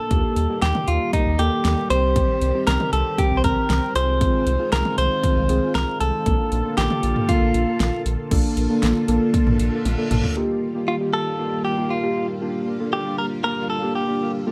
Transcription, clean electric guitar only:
0, 0, Header, 1, 2, 480
1, 0, Start_track
1, 0, Tempo, 512821
1, 102, Time_signature, 4, 2, 24, 8
1, 13588, End_track
2, 0, Start_track
2, 0, Title_t, "Clean electric guitar"
2, 0, Program_c, 0, 27
2, 0, Note_on_c, 0, 69, 98
2, 579, Note_off_c, 0, 69, 0
2, 583, Note_on_c, 0, 67, 95
2, 822, Note_on_c, 0, 65, 86
2, 830, Note_off_c, 0, 67, 0
2, 1058, Note_off_c, 0, 65, 0
2, 1062, Note_on_c, 0, 63, 95
2, 1302, Note_on_c, 0, 67, 94
2, 1309, Note_off_c, 0, 63, 0
2, 1778, Note_off_c, 0, 67, 0
2, 1782, Note_on_c, 0, 72, 103
2, 2464, Note_off_c, 0, 72, 0
2, 2502, Note_on_c, 0, 70, 95
2, 2739, Note_off_c, 0, 70, 0
2, 2742, Note_on_c, 0, 69, 93
2, 2983, Note_on_c, 0, 67, 94
2, 2989, Note_off_c, 0, 69, 0
2, 3157, Note_on_c, 0, 72, 76
2, 3162, Note_off_c, 0, 67, 0
2, 3219, Note_off_c, 0, 72, 0
2, 3223, Note_on_c, 0, 70, 97
2, 3700, Note_off_c, 0, 70, 0
2, 3703, Note_on_c, 0, 72, 103
2, 4419, Note_off_c, 0, 72, 0
2, 4423, Note_on_c, 0, 70, 94
2, 4645, Note_off_c, 0, 70, 0
2, 4662, Note_on_c, 0, 72, 96
2, 5379, Note_off_c, 0, 72, 0
2, 5382, Note_on_c, 0, 70, 93
2, 5605, Note_off_c, 0, 70, 0
2, 5621, Note_on_c, 0, 69, 94
2, 6338, Note_off_c, 0, 69, 0
2, 6342, Note_on_c, 0, 67, 84
2, 6822, Note_on_c, 0, 65, 84
2, 6836, Note_off_c, 0, 67, 0
2, 7504, Note_off_c, 0, 65, 0
2, 10183, Note_on_c, 0, 65, 94
2, 10248, Note_off_c, 0, 65, 0
2, 10423, Note_on_c, 0, 69, 115
2, 10898, Note_off_c, 0, 69, 0
2, 10901, Note_on_c, 0, 67, 91
2, 11142, Note_on_c, 0, 65, 77
2, 11149, Note_off_c, 0, 67, 0
2, 11477, Note_off_c, 0, 65, 0
2, 12101, Note_on_c, 0, 67, 96
2, 12337, Note_off_c, 0, 67, 0
2, 12340, Note_on_c, 0, 70, 104
2, 12405, Note_off_c, 0, 70, 0
2, 12581, Note_on_c, 0, 70, 116
2, 12816, Note_off_c, 0, 70, 0
2, 12820, Note_on_c, 0, 69, 100
2, 13057, Note_off_c, 0, 69, 0
2, 13060, Note_on_c, 0, 67, 82
2, 13396, Note_off_c, 0, 67, 0
2, 13588, End_track
0, 0, End_of_file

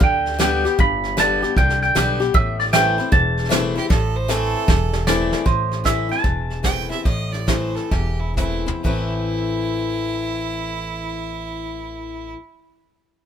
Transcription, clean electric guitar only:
0, 0, Header, 1, 2, 480
1, 0, Start_track
1, 0, Key_signature, 0, "minor"
1, 0, Tempo, 388853
1, 973, Time_signature, 4, 2, 24, 8
1, 7214, Tempo, 407886
1, 9134, Tempo, 456621
1, 10574, Tempo, 487409
1, 14916, End_track
2, 0, Start_track
2, 0, Title_t, "Clean electric guitar"
2, 0, Program_c, 0, 27
2, 44, Note_on_c, 0, 79, 97
2, 499, Note_off_c, 0, 79, 0
2, 514, Note_on_c, 0, 79, 101
2, 951, Note_off_c, 0, 79, 0
2, 990, Note_on_c, 0, 83, 106
2, 1428, Note_off_c, 0, 83, 0
2, 1478, Note_on_c, 0, 81, 107
2, 1912, Note_off_c, 0, 81, 0
2, 1944, Note_on_c, 0, 79, 106
2, 2240, Note_off_c, 0, 79, 0
2, 2255, Note_on_c, 0, 79, 103
2, 2695, Note_off_c, 0, 79, 0
2, 2898, Note_on_c, 0, 76, 97
2, 3201, Note_off_c, 0, 76, 0
2, 3206, Note_on_c, 0, 74, 89
2, 3268, Note_off_c, 0, 74, 0
2, 3370, Note_on_c, 0, 79, 102
2, 3851, Note_off_c, 0, 79, 0
2, 3856, Note_on_c, 0, 81, 93
2, 6203, Note_off_c, 0, 81, 0
2, 6260, Note_on_c, 0, 74, 99
2, 6740, Note_on_c, 0, 72, 77
2, 6749, Note_off_c, 0, 74, 0
2, 7225, Note_on_c, 0, 76, 94
2, 7231, Note_off_c, 0, 72, 0
2, 7526, Note_off_c, 0, 76, 0
2, 7534, Note_on_c, 0, 81, 93
2, 9218, Note_off_c, 0, 81, 0
2, 9218, Note_on_c, 0, 79, 93
2, 10041, Note_off_c, 0, 79, 0
2, 14916, End_track
0, 0, End_of_file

